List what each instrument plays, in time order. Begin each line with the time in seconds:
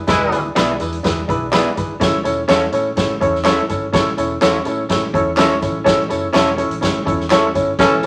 0.07 fingered electric bass E1, horn section G#3 E4 B4, upright piano D4 E4 G#4 B4, kick, snare, closed hi-hat
0.31 fingered electric bass D2, upright piano D4 E4 G#4 B4, closed hi-hat, tambourine
0.55 fingered electric bass B1, clean electric guitar B3 E4 G#4 D5, upright piano D4 E4 G#4 B4, snare, clap, closed hi-hat, tambourine
0.79 fingered electric bass E2, upright piano D4 E4 G#4 B4, closed hi-hat, tambourine
0.93 closed hi-hat
1.03 fingered electric bass E2, upright piano D4 E4 G#4 B4, kick, snare, closed hi-hat, tambourine
1.28 fingered electric bass B1, upright piano D4 E4 G#4 B4, kick, closed hi-hat
1.52 clean electric guitar B3 E4 G#4 D5, upright piano D4 E4 G#4 B4, snare, clap, closed hi-hat, tambourine
1.75 fingered electric bass G#1, upright piano D4 E4 G#4 B4, kick, closed hi-hat, tambourine
2.00 fingered electric bass A1, upright piano C#4 E4 A4 C#5, kick, snare, closed hi-hat, tambourine
2.24 fingered electric bass E1, upright piano C#4 E4 A4 C#5, closed hi-hat, tambourine
2.48 fingered electric bass E2, upright piano C#4 E4 A4 C#5, clean electric guitar C#4 E4 A4 C#5, snare, clap, closed hi-hat, tambourine
2.72 fingered electric bass A2, upright piano C#4 E4 A4 C#5, closed hi-hat, tambourine
2.96 fingered electric bass A2, upright piano C#4 E4 A4 C#5, kick, snare, closed hi-hat, tambourine
3.20 fingered electric bass E2, upright piano C#4 E4 A4 C#5, kick, closed hi-hat
3.35 snare
3.44 upright piano C#4 E4 A4 C#5, clean electric guitar C#4 E4 A4 C#5, snare, clap, closed hi-hat, tambourine
3.68 fingered electric bass G1, upright piano C#4 E4 A4 C#5, kick, closed hi-hat, tambourine
3.92 fingered electric bass A1, upright piano C#4 E4 A4 C#5, kick, snare, closed hi-hat
4.17 fingered electric bass E1, upright piano C#4 E4 A4 C#5, closed hi-hat, tambourine
4.41 fingered electric bass E2, upright piano C#4 E4 A4 C#5, clean electric guitar C#4 E4 A4 C#5, snare, clap, closed hi-hat, tambourine
4.65 fingered electric bass A2, upright piano C#4 E4 A4 C#5, closed hi-hat, tambourine
4.89 fingered electric bass A2, upright piano C#4 E4 A4 C#5, kick, snare, closed hi-hat, tambourine
5.13 fingered electric bass E2, upright piano C#4 E4 A4 C#5, kick, closed hi-hat
5.37 upright piano C#4 E4 A4 C#5, clean electric guitar C#4 E4 A4 C#5, snare, clap, closed hi-hat, tambourine
5.61 fingered electric bass A1, upright piano C#4 E4 A4 C#5, kick, closed hi-hat, tambourine
5.84 fingered electric bass A1, upright piano C#4 E4 A4 C#5, kick, snare, closed hi-hat, tambourine
6.09 fingered electric bass F#1, upright piano C#4 E4 A4 C#5, closed hi-hat, tambourine
6.33 fingered electric bass E1, upright piano C#4 E4 A4 C#5, clean electric guitar C#4 E4 A4 C#5, snare, clap, closed hi-hat, tambourine
6.57 upright piano C#4 E4 A4 C#5, closed hi-hat, tambourine
6.70 fingered electric bass A1, closed hi-hat
6.81 fingered electric bass A2, upright piano C#4 E4 A4 C#5, kick, snare, closed hi-hat, tambourine
7.05 fingered electric bass E2, upright piano C#4 E4 A4 C#5, kick, closed hi-hat, tambourine
7.20 snare
7.30 clean electric guitar C#4 E4 A4 C#5, upright piano C#4 E4 A4 C#5, snare, clap, closed hi-hat, tambourine
7.54 fingered electric bass G1, upright piano C#4 E4 A4 C#5, kick, closed hi-hat, tambourine
7.79 fingered electric bass A1, horn section E3 C#4 A4, upright piano C#4 E4 A4 C#5, kick, snare, closed hi-hat, tambourine
8.03 fingered electric bass A1, upright piano C#4 E4, closed hi-hat, tambourine